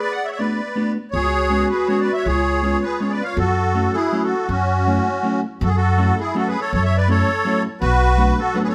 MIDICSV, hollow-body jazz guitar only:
0, 0, Header, 1, 2, 480
1, 0, Start_track
1, 0, Key_signature, 3, "minor"
1, 0, Tempo, 373367
1, 14, Time_signature, 3, 2, 24, 8
1, 7215, Tempo, 368098
1, 11304, End_track
2, 0, Start_track
2, 0, Title_t, "Hollow-body jazz guitar"
2, 0, Program_c, 0, 26
2, 504, Note_on_c, 0, 57, 52
2, 514, Note_on_c, 0, 59, 42
2, 516, Note_on_c, 0, 62, 44
2, 521, Note_on_c, 0, 66, 54
2, 764, Note_off_c, 0, 57, 0
2, 765, Note_off_c, 0, 59, 0
2, 769, Note_off_c, 0, 62, 0
2, 772, Note_off_c, 0, 66, 0
2, 971, Note_on_c, 0, 57, 57
2, 981, Note_on_c, 0, 59, 58
2, 987, Note_on_c, 0, 62, 50
2, 994, Note_on_c, 0, 66, 58
2, 1238, Note_off_c, 0, 57, 0
2, 1243, Note_off_c, 0, 59, 0
2, 1246, Note_off_c, 0, 62, 0
2, 1249, Note_off_c, 0, 66, 0
2, 1927, Note_on_c, 0, 56, 55
2, 1938, Note_on_c, 0, 61, 48
2, 1939, Note_on_c, 0, 59, 46
2, 1949, Note_on_c, 0, 66, 60
2, 2196, Note_off_c, 0, 56, 0
2, 2200, Note_off_c, 0, 59, 0
2, 2202, Note_off_c, 0, 61, 0
2, 2207, Note_off_c, 0, 66, 0
2, 2420, Note_on_c, 0, 56, 55
2, 2428, Note_on_c, 0, 59, 55
2, 2438, Note_on_c, 0, 61, 59
2, 2445, Note_on_c, 0, 66, 63
2, 2683, Note_off_c, 0, 56, 0
2, 2687, Note_off_c, 0, 59, 0
2, 2693, Note_off_c, 0, 61, 0
2, 2694, Note_off_c, 0, 66, 0
2, 3375, Note_on_c, 0, 56, 58
2, 3388, Note_on_c, 0, 59, 39
2, 3392, Note_on_c, 0, 61, 46
2, 3399, Note_on_c, 0, 65, 63
2, 3640, Note_off_c, 0, 56, 0
2, 3642, Note_off_c, 0, 59, 0
2, 3648, Note_off_c, 0, 61, 0
2, 3651, Note_off_c, 0, 65, 0
2, 3859, Note_on_c, 0, 56, 61
2, 3867, Note_on_c, 0, 59, 50
2, 3872, Note_on_c, 0, 61, 58
2, 3880, Note_on_c, 0, 65, 72
2, 4122, Note_off_c, 0, 56, 0
2, 4123, Note_off_c, 0, 59, 0
2, 4127, Note_off_c, 0, 61, 0
2, 4131, Note_off_c, 0, 65, 0
2, 4807, Note_on_c, 0, 54, 55
2, 4816, Note_on_c, 0, 57, 50
2, 4823, Note_on_c, 0, 61, 56
2, 4837, Note_on_c, 0, 64, 49
2, 5073, Note_off_c, 0, 54, 0
2, 5078, Note_off_c, 0, 57, 0
2, 5083, Note_off_c, 0, 61, 0
2, 5085, Note_off_c, 0, 64, 0
2, 5299, Note_on_c, 0, 54, 64
2, 5308, Note_on_c, 0, 57, 44
2, 5315, Note_on_c, 0, 61, 61
2, 5322, Note_on_c, 0, 64, 52
2, 5560, Note_off_c, 0, 54, 0
2, 5562, Note_off_c, 0, 57, 0
2, 5568, Note_off_c, 0, 61, 0
2, 5569, Note_off_c, 0, 64, 0
2, 6258, Note_on_c, 0, 54, 49
2, 6261, Note_on_c, 0, 57, 55
2, 6272, Note_on_c, 0, 61, 41
2, 6279, Note_on_c, 0, 64, 60
2, 6519, Note_off_c, 0, 54, 0
2, 6522, Note_off_c, 0, 57, 0
2, 6524, Note_off_c, 0, 61, 0
2, 6530, Note_off_c, 0, 64, 0
2, 6721, Note_on_c, 0, 54, 59
2, 6733, Note_on_c, 0, 57, 56
2, 6739, Note_on_c, 0, 64, 70
2, 6741, Note_on_c, 0, 61, 49
2, 6992, Note_off_c, 0, 54, 0
2, 6999, Note_off_c, 0, 57, 0
2, 6999, Note_off_c, 0, 61, 0
2, 7001, Note_off_c, 0, 64, 0
2, 7686, Note_on_c, 0, 54, 60
2, 7695, Note_on_c, 0, 61, 51
2, 7697, Note_on_c, 0, 57, 48
2, 7704, Note_on_c, 0, 64, 57
2, 7707, Note_on_c, 0, 66, 59
2, 7959, Note_off_c, 0, 54, 0
2, 7961, Note_off_c, 0, 57, 0
2, 7964, Note_off_c, 0, 61, 0
2, 7966, Note_off_c, 0, 64, 0
2, 7966, Note_off_c, 0, 66, 0
2, 8175, Note_on_c, 0, 54, 73
2, 8182, Note_on_c, 0, 57, 52
2, 8189, Note_on_c, 0, 61, 64
2, 8194, Note_on_c, 0, 66, 77
2, 8201, Note_on_c, 0, 64, 57
2, 8444, Note_off_c, 0, 54, 0
2, 8445, Note_off_c, 0, 57, 0
2, 8450, Note_off_c, 0, 61, 0
2, 8453, Note_off_c, 0, 66, 0
2, 8454, Note_off_c, 0, 64, 0
2, 9129, Note_on_c, 0, 54, 66
2, 9136, Note_on_c, 0, 57, 59
2, 9143, Note_on_c, 0, 61, 66
2, 9153, Note_on_c, 0, 64, 55
2, 9153, Note_on_c, 0, 66, 60
2, 9398, Note_off_c, 0, 54, 0
2, 9401, Note_off_c, 0, 57, 0
2, 9406, Note_off_c, 0, 61, 0
2, 9407, Note_off_c, 0, 66, 0
2, 9410, Note_off_c, 0, 64, 0
2, 9608, Note_on_c, 0, 54, 76
2, 9619, Note_on_c, 0, 57, 67
2, 9629, Note_on_c, 0, 61, 52
2, 9632, Note_on_c, 0, 66, 65
2, 9639, Note_on_c, 0, 64, 59
2, 9876, Note_off_c, 0, 54, 0
2, 9882, Note_off_c, 0, 57, 0
2, 9884, Note_off_c, 0, 61, 0
2, 9889, Note_off_c, 0, 64, 0
2, 9889, Note_off_c, 0, 66, 0
2, 10558, Note_on_c, 0, 54, 62
2, 10565, Note_on_c, 0, 57, 53
2, 10575, Note_on_c, 0, 62, 58
2, 10576, Note_on_c, 0, 59, 50
2, 10580, Note_on_c, 0, 66, 69
2, 10830, Note_off_c, 0, 54, 0
2, 10835, Note_off_c, 0, 57, 0
2, 10836, Note_off_c, 0, 59, 0
2, 10839, Note_off_c, 0, 62, 0
2, 10842, Note_off_c, 0, 66, 0
2, 11034, Note_on_c, 0, 54, 68
2, 11038, Note_on_c, 0, 57, 61
2, 11048, Note_on_c, 0, 62, 63
2, 11054, Note_on_c, 0, 59, 57
2, 11055, Note_on_c, 0, 66, 80
2, 11304, Note_off_c, 0, 54, 0
2, 11304, Note_off_c, 0, 57, 0
2, 11304, Note_off_c, 0, 59, 0
2, 11304, Note_off_c, 0, 62, 0
2, 11304, Note_off_c, 0, 66, 0
2, 11304, End_track
0, 0, End_of_file